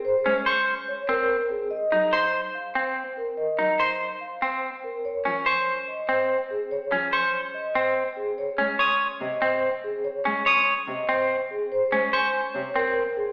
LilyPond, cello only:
\new Staff \with { instrumentName = "Cello" } { \clef bass \time 4/4 \key des \major \tempo 4 = 144 r8 aes8 r2. | r8 ges8 r2. | r8 ges8 r2. | r8 f8 r2. |
r8 f8 r2. | r8 aes8 r4 c8 r4. | r8 aes8 r4 c8 r4. | r8 aes8 r4 c8 r4. | }